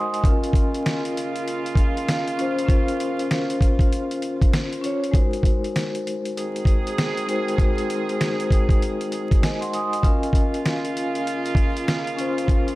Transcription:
Already playing: vibraphone D#5 F#5 G#5 C6 D#6
0.12 vibraphone D#5 G#5, closed hi-hat
0.23 horn section C#3 A#3 F4, vibraphone C#4 F4 A#4, kick, closed hi-hat
0.44 closed hi-hat
0.53 kick, closed hi-hat
0.74 closed hi-hat
0.86 snare, closed hi-hat
1.05 closed hi-hat
1.17 closed hi-hat
1.36 closed hi-hat
1.48 closed hi-hat
1.66 closed hi-hat
1.75 kick, closed hi-hat
1.97 closed hi-hat
2.08 snare, closed hi-hat
2.28 closed hi-hat
2.37 vibraphone C#4 F4 C5, closed hi-hat
2.59 closed hi-hat
2.66 vibraphone C#4 F4 A#4, kick, closed hi-hat
2.88 closed hi-hat
3.00 closed hi-hat
3.19 closed hi-hat
3.31 snare, closed hi-hat
3.50 closed hi-hat
3.61 kick, closed hi-hat
3.79 kick, closed hi-hat
3.93 closed hi-hat
4.11 closed hi-hat
4.22 closed hi-hat
4.42 kick, closed hi-hat
4.53 snare, closed hi-hat
4.73 closed hi-hat
4.81 vibraphone C#4 F4 C#5, closed hi-hat
5.04 closed hi-hat
5.12 vibraphone G#3 D#4 F#4 A#4 C5, kick, closed hi-hat
5.33 closed hi-hat
5.43 kick, closed hi-hat
5.64 closed hi-hat
5.76 snare, closed hi-hat
5.95 closed hi-hat
6.07 closed hi-hat
6.25 closed hi-hat
6.36 horn section D#3 C4 G#4, closed hi-hat
6.56 closed hi-hat
6.65 kick, closed hi-hat
6.87 closed hi-hat
6.98 snare, closed hi-hat
7.17 closed hi-hat
7.26 vibraphone G#3 D#4 F#4 A#4 C5, closed hi-hat
7.48 closed hi-hat
7.57 vibraphone G#3 D#4 F#4 A#4 C5, kick, closed hi-hat
7.78 closed hi-hat
7.90 closed hi-hat
8.09 closed hi-hat
8.21 snare, closed hi-hat
8.40 closed hi-hat
8.51 kick, closed hi-hat
8.69 kick, closed hi-hat
8.82 closed hi-hat
9.01 closed hi-hat
9.12 closed hi-hat
9.31 kick, closed hi-hat
9.42 vibraphone D#5 G#5, snare, closed hi-hat
9.61 vibraphone F#5 C6, closed hi-hat
9.74 vibraphone G#5 D#6, closed hi-hat
9.92 vibraphone D#5 G#5, closed hi-hat
10.03 horn section C#3 A#3 F4, vibraphone C#4 F4 A#4, kick, closed hi-hat
10.23 closed hi-hat
10.33 kick, closed hi-hat
10.54 closed hi-hat
10.65 snare, closed hi-hat
10.85 closed hi-hat
10.97 closed hi-hat
11.15 closed hi-hat
11.27 closed hi-hat
11.46 closed hi-hat
11.55 kick, closed hi-hat
11.77 closed hi-hat
11.88 snare, closed hi-hat
12.07 closed hi-hat
12.17 vibraphone C#4 F4 C5, closed hi-hat
12.38 closed hi-hat
12.46 vibraphone C#4 F4 A#4, kick, closed hi-hat
12.68 closed hi-hat

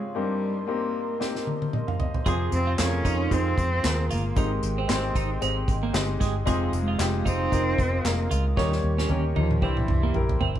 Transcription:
Already playing: grand piano G#2 C#3 G#3 C4 C#4 F4 G4 G#4 C5, analog synth pad F5
0.15 grand piano G2 A#3 C4 D#4 G4 C5, cello G3, analog synth pad A#4 D#5 C6
0.67 grand piano A#3 C4 D#4 G4 C5, cello A#3
1.20 grand piano A#3 C4 D#4 G4 C5, snare
1.35 snare
1.47 high tom
1.62 high tom
1.73 grand piano D#5, mid tom
1.87 grand piano F5, mid tom
1.99 grand piano D#5, floor tom
2.14 grand piano C5, floor tom
2.25 fingered electric bass F2, grand piano C3 F4 G#4 C5, analog synth pad G#3 F5, clean electric guitar G#4, kick, closed hi-hat
2.52 fingered electric bass F2, cello C4, closed hi-hat
2.67 clean electric guitar F4
2.78 fingered electric bass F2, cello C#4, grand piano F4 G#4 A4, snare, clap, closed hi-hat
2.86 grand piano A#4
3.05 fingered electric bass F2, clean electric guitar D#4, kick, closed hi-hat
3.31 fingered electric bass F2, cello C4, grand piano F4 G#4 C5, kick, closed hi-hat
3.58 fingered electric bass F2, kick, closed hi-hat
3.83 fingered electric bass D#2, grand piano F4 G#4 A#4, snare, clap, closed hi-hat
4.11 fingered electric bass G1, cello A#3, clean electric guitar F4, closed hi-hat
4.36 fingered electric bass G#1, grand piano G#2 D#3 G#3 C4 D#4 G4 C5, cello G#3, clean electric guitar D#4, analog synth pad G5, kick, closed hi-hat
4.63 fingered electric bass G#1, closed hi-hat
4.78 clean electric guitar C4
4.88 fingered electric bass G#1, grand piano G#3 C4 D#4 G4 C5, cello C4, snare, clap, closed hi-hat
5.15 fingered electric bass G#1, clean electric guitar D#4, kick, closed hi-hat
5.41 fingered electric bass G#1, grand piano G#3 C4 D#4 G4 D#5, clean electric guitar C4, closed hi-hat
5.68 fingered electric bass G#1, kick, closed hi-hat
5.83 clean electric guitar A#3
5.93 fingered electric bass G1, grand piano G#3 C4 D#4 G4 D#5, snare, clap, closed hi-hat
6.20 fingered electric bass G1, clean electric guitar G#3, kick, snare, closed hi-hat
6.46 fingered electric bass F1, grand piano C3 G#3 C4 D#4 F4 C5, clean electric guitar G#4, analog synth pad F5 D#6, kick, closed hi-hat
6.73 fingered electric bass F1, cello G#3, closed hi-hat
6.88 clean electric guitar F4
6.98 fingered electric bass F1, grand piano G#3 C4 D#4 F4 G4, snare, clap, closed hi-hat
7.25 fingered electric bass F1, cello C4, clean electric guitar D#4, kick, closed hi-hat
7.51 fingered electric bass F1, grand piano G#3 C4 D#4 F4 A#4, kick, closed hi-hat
7.78 fingered electric bass F1, kick, closed hi-hat
8.03 fingered electric bass F1, grand piano G#3 C4 D#4 F4 A#4, cello A#3, snare, clap, closed hi-hat
8.31 fingered electric bass C#2, cello G#3, clean electric guitar F4, closed hi-hat
8.56 fingered electric bass D#2, grand piano A#2 A#3 C#4 D#4 G4 C#5, cello G3, clean electric guitar D#4, analog synth pad G4 D#5 C#6, kick, snare
8.72 snare
8.83 fingered electric bass D#2
8.98 clean electric guitar C#4, snare
9.09 fingered electric bass D#2, grand piano A#3 C#4 D#4 G4 A#4, high tom
9.36 fingered electric bass D#2, cello F3, clean electric guitar D#4, high tom
9.51 mid tom
9.62 fingered electric bass C2, grand piano G2 E4 G4 C5, cello E3, clean electric guitar C4, analog synth pad E5 C6, kick
9.77 mid tom
9.88 fingered electric bass C2, mid tom
10.03 clean electric guitar A#3
10.14 fingered electric bass A#1, grand piano E4 G4 A#4, mid tom
10.29 floor tom
10.41 fingered electric bass G1, clean electric guitar C4, floor tom
10.56 floor tom

